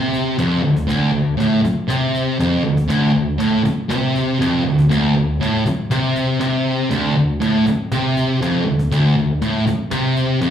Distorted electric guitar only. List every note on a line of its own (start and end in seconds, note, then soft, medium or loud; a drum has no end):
0.00 0.37 C3 medium
0.38 0.63 F2 loud
0.63 0.83 D2 medium
0.87 1.11 D2 loud
1.13 1.33 D2 medium
1.37 1.62 A2 medium
1.63 muted distorted electric guitar stroke medium
1.88 2.38 C3 loud
2.40 2.64 F2 loud
2.65 2.85 D2 medium
2.88 3.12 D2 loud
3.14 3.35 D2 medium
3.38 3.63 A2 loud
3.64 muted distorted electric guitar stroke medium
3.89 4.39 C3 loud
4.39 4.64 F2 loud
4.65 4.85 D2 medium
4.89 5.14 D2 loud
5.16 5.36 D2 medium
5.41 5.65 A2 loud
5.66 muted distorted electric guitar stroke medium
5.91 6.39 C3 medium
6.40 6.90 C3 loud
6.90 7.15 D2 loud
7.17 7.37 D2 medium
7.41 7.66 A2 loud
7.67 muted distorted electric guitar stroke medium
7.92 8.41 C3 medium
8.42 8.65 F2 loud
8.66 8.86 D2 medium
8.91 9.15 D2 loud
9.17 9.37 D2 medium
9.42 9.66 A2 loud
9.67 muted distorted electric guitar stroke medium
9.91 10.41 C3 medium
10.41 10.50 F2 loud